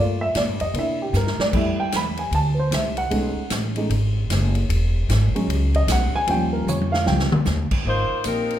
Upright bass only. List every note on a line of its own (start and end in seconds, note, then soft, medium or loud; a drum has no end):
0.00 0.34 G2 medium
0.35 0.48 A#2 medium
0.48 0.60 G2 medium
0.61 0.73 F2 medium
0.74 1.12 C3 medium
1.13 1.37 G2 medium
1.38 muted upright bass stroke soft
1.53 1.77 F2 medium
1.78 muted upright bass stroke soft
1.92 2.30 E2 medium
2.31 2.70 D2 medium
2.71 3.10 C2 medium
3.11 3.35 B1 medium
3.36 muted upright bass stroke soft
3.50 3.89 A1 medium
3.90 4.28 G#1 medium
4.30 4.68 F#1 medium
4.69 5.08 E1 medium
5.09 5.33 G#1 medium
5.47 5.86 C#2 medium
5.88 6.11 B1 loud
6.14 muted upright bass stroke soft
6.27 6.66 D#2 medium
6.67 7.06 F2 medium
7.07 7.30 C#2 medium
7.32 muted upright bass stroke soft
7.46 7.70 D#2 loud
7.72 muted upright bass stroke soft
7.85 8.09 G#1 medium
8.11 muted upright bass stroke soft
8.25 8.59 A#1 medium